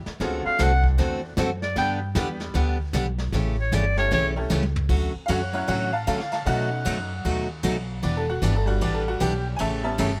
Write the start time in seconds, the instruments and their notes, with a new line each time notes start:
0.06 muted upright bass stroke, snare
0.20 upright bass D2, steel-string acoustic guitar D3 A3 C4 F#4 A4, honky-tonk piano G#3 B3 C#4 F4 G#4, brush sweep, snare
0.45 honky-tonk piano A3 C4 D4 F#4 A4, clarinet F5, muted upright bass stroke
0.59 upright bass C2, steel-string acoustic guitar D3 A3 C4 F#4 A4, clarinet F#5, snare, hi-hat pedal
0.84 kick
0.98 upright bass E2, steel-string acoustic guitar D3 A3 C4 F#4 A4, brush sweep, snare
1.37 upright bass F#2, steel-string acoustic guitar D3 A3 C4 F#4 A4, snare, hi-hat pedal
1.62 clarinet D5, snare
1.76 upright bass G2, steel-string acoustic guitar D3 G3 B3 D4 G4, honky-tonk piano G3 B3 D4 G4 B4, clarinet G5, brush sweep, snare
2.15 upright bass E2, steel-string acoustic guitar D3 G3 B3 D4 G4, honky-tonk piano G3 B3 D4 G4 B4, snare, hi-hat pedal
2.40 snare
2.54 upright bass D2, steel-string acoustic guitar D3 G3 B3 D4 G4, brush sweep, snare
2.93 upright bass B1, steel-string acoustic guitar D3 G3 B3 D4 G4, snare, hi-hat pedal
3.18 snare
3.32 upright bass A1, steel-string acoustic guitar C#3 E3 A3 C#4 G4, brush sweep, snare
3.59 clarinet C#5
3.72 upright bass G1, steel-string acoustic guitar C#3 E3 A3 C#4 G4, clarinet D5, snare, hi-hat pedal
3.97 honky-tonk piano A3 C#4 E4 G4 A4, clarinet C#5, snare
4.11 upright bass B1, steel-string acoustic guitar C#3 E3 A3 C#4 G4, clarinet C#5, brush sweep, snare
4.36 honky-tonk piano A3 C#4 E4 G4 A4
4.50 upright bass C#2, steel-string acoustic guitar C#3 E3 A3 C#4 G4, snare, hi-hat pedal
4.63 high tom
4.76 floor tom
4.89 upright bass D2, steel-string acoustic guitar D3 F#3 A3 C#4 F#4, kick, crash
5.15 muted upright bass stroke
5.26 upright bass F#2, steel-string acoustic guitar D3 F#3 A3 C#4 F#4, honky-tonk piano C#5 F5, hi-hat pedal, ride
5.30 honky-tonk piano F#5
5.53 honky-tonk piano F#3 C#4 E4 C#5 F#5, ride
5.67 upright bass A2, steel-string acoustic guitar D3 F#3 A3 C#4 F#4, honky-tonk piano C#5 F#5, ride
5.93 honky-tonk piano F5 A5
6.07 steel-string acoustic guitar D3 F#3 A3 C#4 F#4, upright bass D3, honky-tonk piano F5 A5, hi-hat pedal, ride
6.20 snare
6.32 honky-tonk piano F5 A5, snare, ride
6.45 steel-string acoustic guitar B2 F#3 A3 D#4 F#4, upright bass B2, honky-tonk piano A3 C#4 D#4 F#5, ride
6.85 upright bass F#2, steel-string acoustic guitar B2 F#3 A3 D#4 F#4, hi-hat pedal, ride
7.25 upright bass D#2, steel-string acoustic guitar B2 F#3 A3 D#4 F#4, ride
7.63 upright bass B1, steel-string acoustic guitar B2 F#3 A3 D#4 F#4, hi-hat pedal, ride
8.03 upright bass E1, steel-string acoustic guitar E3 B3 D4 G4, honky-tonk piano D5, ride
8.17 honky-tonk piano A4
8.30 honky-tonk piano F#4
8.42 upright bass G1, steel-string acoustic guitar E3 B3 D4 G4, honky-tonk piano D5, hi-hat pedal, ride
8.56 honky-tonk piano A4
8.66 honky-tonk piano G3 D4 F#4, ride
8.81 upright bass A1, steel-string acoustic guitar E3 B3 D4 G4, honky-tonk piano D5, ride
8.95 honky-tonk piano A4
9.08 honky-tonk piano F#4
9.20 upright bass B1, steel-string acoustic guitar E3 B3 D4 G4, honky-tonk piano G4, hi-hat pedal, ride
9.56 upright bass A1, steel-string acoustic guitar C#3 E3 A3 C#4 G4, honky-tonk piano E5 G#5, ride
9.61 honky-tonk piano A5
9.83 honky-tonk piano G3 B3 C#4 E5 A5
9.98 upright bass G1, steel-string acoustic guitar C#3 E3 A3 C#4 G4, honky-tonk piano E5 A5, hi-hat pedal, ride